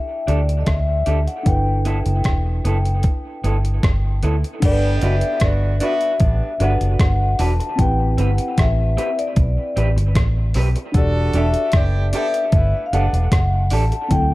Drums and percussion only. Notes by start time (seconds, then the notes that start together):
0.28 closed hi-hat
0.49 closed hi-hat
0.66 kick, cross-stick, closed hi-hat
1.06 closed hi-hat
1.27 closed hi-hat
1.46 kick, closed hi-hat
1.85 closed hi-hat
2.06 closed hi-hat
2.24 kick, cross-stick, closed hi-hat
2.65 closed hi-hat
2.85 closed hi-hat
3.03 kick, closed hi-hat
3.44 closed hi-hat
3.65 closed hi-hat
3.83 kick, cross-stick, closed hi-hat
4.23 closed hi-hat
4.44 closed hi-hat
4.62 kick, closed hi-hat, crash
5.01 closed hi-hat
5.21 closed hi-hat
5.40 kick, cross-stick, closed hi-hat
5.80 closed hi-hat
6.01 closed hi-hat
6.20 kick, closed hi-hat
6.60 closed hi-hat
6.81 closed hi-hat
7.00 kick, cross-stick, closed hi-hat
7.39 open hi-hat
7.60 closed hi-hat
7.79 kick, closed hi-hat
8.18 closed hi-hat
8.38 closed hi-hat
8.58 kick, cross-stick, closed hi-hat
8.98 closed hi-hat
9.19 closed hi-hat
9.36 kick, closed hi-hat
9.77 closed hi-hat
9.98 closed hi-hat
10.15 kick, cross-stick, closed hi-hat
10.54 open hi-hat
10.76 closed hi-hat
10.94 kick, closed hi-hat
11.33 closed hi-hat
11.54 closed hi-hat
11.72 kick, cross-stick, closed hi-hat
12.13 closed hi-hat
12.34 closed hi-hat
12.52 kick, closed hi-hat
12.93 closed hi-hat
13.14 closed hi-hat
13.32 kick, cross-stick, closed hi-hat
13.70 open hi-hat
13.92 closed hi-hat
14.11 kick, closed hi-hat